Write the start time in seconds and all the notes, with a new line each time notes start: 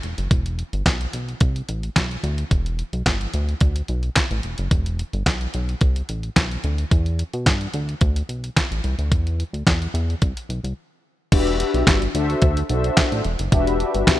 0.03 E1, closed hi-hat
0.18 F#1, closed hi-hat
0.31 E1, kick, closed hi-hat
0.46 closed hi-hat
0.59 closed hi-hat
0.73 G1, closed hi-hat
0.86 B1, kick, snare, clap, closed hi-hat
1.01 closed hi-hat
1.13 B1, closed hi-hat
1.29 closed hi-hat
1.41 C2, kick, closed hi-hat
1.56 closed hi-hat
1.69 A1, closed hi-hat
1.83 closed hi-hat
1.96 B1, kick, snare, clap, closed hi-hat
2.11 closed hi-hat
2.23 D2, closed hi-hat
2.38 closed hi-hat
2.51 E1, kick, closed hi-hat
2.66 closed hi-hat
2.79 closed hi-hat
2.93 B1, closed hi-hat
3.06 G1, kick, snare, clap, closed hi-hat
3.21 closed hi-hat
3.34 D2, closed hi-hat
3.49 closed hi-hat
3.61 D2, kick, closed hi-hat
3.76 closed hi-hat
3.88 B1, closed hi-hat
4.03 closed hi-hat
4.16 kick, snare, clap, closed hi-hat
4.31 A1, closed hi-hat
4.43 E1, closed hi-hat
4.58 F#1, closed hi-hat
4.71 E1, kick, closed hi-hat
4.86 closed hi-hat
4.99 closed hi-hat
5.13 G1, closed hi-hat
5.26 B1, kick, snare, clap, closed hi-hat
5.41 closed hi-hat
5.54 B1, closed hi-hat
5.69 closed hi-hat
5.81 C2, kick, closed hi-hat
5.96 closed hi-hat
6.09 A1, closed hi-hat
6.23 closed hi-hat
6.36 B1, kick, snare, clap, closed hi-hat
6.51 closed hi-hat
6.64 D2, closed hi-hat
6.78 closed hi-hat
6.91 E2, kick, closed hi-hat
7.06 closed hi-hat
7.19 closed hi-hat
7.33 B2, closed hi-hat
7.46 G2, kick, snare, clap, closed hi-hat
7.61 closed hi-hat
7.74 D2, closed hi-hat
7.89 closed hi-hat
8.01 D2, kick, closed hi-hat
8.16 closed hi-hat
8.29 B1, closed hi-hat
8.44 closed hi-hat
8.57 kick, snare, clap, closed hi-hat
8.71 A1, closed hi-hat
8.84 C2, closed hi-hat
8.99 D2, closed hi-hat
9.12 E2, kick, closed hi-hat
9.27 closed hi-hat
9.40 closed hi-hat
9.53 D2, closed hi-hat
9.67 E2, kick, snare, clap, closed hi-hat
9.82 closed hi-hat
9.94 E2, closed hi-hat
10.10 closed hi-hat
10.22 C2, kick, closed hi-hat
10.37 closed hi-hat
10.49 B1, closed hi-hat
10.64 C2, closed hi-hat
11.32 E1 D4 F#4 G4 B4 E5, kick, closed hi-hat, crash
11.47 closed hi-hat
11.60 closed hi-hat
11.74 B1, closed hi-hat
11.87 G1, kick, snare, clap, closed hi-hat
12.02 closed hi-hat
12.14 D2 D4 F#4 A4 C5 E5, closed hi-hat
12.30 closed hi-hat
12.42 D2, kick, closed hi-hat
12.57 closed hi-hat
12.69 B1 D4 F#4 A4 C5 E5, closed hi-hat
12.84 closed hi-hat
12.97 kick, snare, clap, closed hi-hat
13.12 A1, closed hi-hat
13.24 E1, closed hi-hat
13.39 F#1, closed hi-hat
13.51 E1 D4 F#4 G4 B4 E5, kick, closed hi-hat
13.67 closed hi-hat
13.80 closed hi-hat
13.95 G1, closed hi-hat
14.07 B1, kick, snare, clap, closed hi-hat